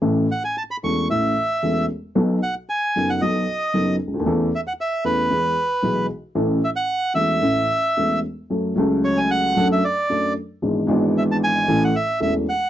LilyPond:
<<
  \new Staff \with { instrumentName = "Bandoneon" } { \time 4/4 \key a \major \tempo 4 = 114 r8 fis''16 gis''16 a''16 b''16 cis'''8 e''4. r8 | r8 fis''8 gis''8. fis''16 dis''4. r8 | r8 e''16 fis''16 e''8 b'2 r8 | r8 e''16 fis''8. e''2 r8 |
\key fis \minor r4 cis''16 gis''16 fis''8. e''16 d''4 r8 | r4 e''16 a''16 gis''8. fis''16 e''8 e''8 fis''8 | }
  \new Staff \with { instrumentName = "Upright piano" } { \clef bass \time 4/4 \key a \major <a,, a, e a cis' a'>8 r4 <e,, e, e a cis' a'>8 <a,, a, e a cis' a'>8 r8 <e,, e, e a cis' a'>8 r8 | <b,, b, fis b dis' a'>8 r4 <fis,, fis, fis b dis' a'>8 <b,, b, fis b dis' a'>8 r8 <fis,, fis, fis b dis' a'>8 r32 cis,32 d,32 dis,32 | <e, e a cis' a'>8 r4 <e, e a cis' a'>8 <e, e gis b gis'>8 r8 <b,, b, e gis b gis'>8 r8 | <a,, a, e a cis' a'>8 r4 <e,, e, e a cis' a'>8 <a,, a, e a cis' a'>8 r8 <e,, e, e a cis' a'>8 r8 |
\key fis \minor <fis, fis a cis' a'>8 <cis, cis fis a cis' a'>4. <fis, fis a d' a'>8 r8 <fis, fis a d' a'>8 r8 | <gis,, gis, e b d' gis'>8 <gis,, gis, e b d' gis'>4. <a,, a, e a cis' a'>8 r8 <e,, e, e a cis' a'>8 r8 | }
>>